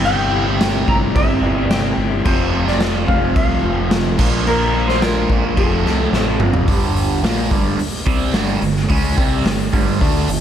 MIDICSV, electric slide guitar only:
0, 0, Header, 1, 2, 480
1, 0, Start_track
1, 0, Tempo, 553506
1, 42, Time_signature, 4, 2, 24, 8
1, 9024, End_track
2, 0, Start_track
2, 0, Title_t, "Electric slide guitar"
2, 0, Program_c, 0, 29
2, 44, Note_on_c, 0, 79, 104
2, 725, Note_off_c, 0, 79, 0
2, 769, Note_on_c, 0, 82, 107
2, 832, Note_off_c, 0, 82, 0
2, 1008, Note_on_c, 0, 76, 107
2, 1389, Note_off_c, 0, 76, 0
2, 1389, Note_on_c, 0, 74, 107
2, 1477, Note_on_c, 0, 79, 94
2, 1495, Note_off_c, 0, 74, 0
2, 1810, Note_off_c, 0, 79, 0
2, 1960, Note_on_c, 0, 72, 91
2, 2321, Note_on_c, 0, 74, 91
2, 2326, Note_off_c, 0, 72, 0
2, 2671, Note_on_c, 0, 77, 101
2, 2686, Note_off_c, 0, 74, 0
2, 2907, Note_off_c, 0, 77, 0
2, 2918, Note_on_c, 0, 77, 97
2, 3598, Note_off_c, 0, 77, 0
2, 3880, Note_on_c, 0, 70, 106
2, 4209, Note_off_c, 0, 70, 0
2, 4229, Note_on_c, 0, 72, 94
2, 4352, Note_off_c, 0, 72, 0
2, 4357, Note_on_c, 0, 70, 102
2, 4835, Note_off_c, 0, 70, 0
2, 4838, Note_on_c, 0, 69, 88
2, 5519, Note_off_c, 0, 69, 0
2, 9024, End_track
0, 0, End_of_file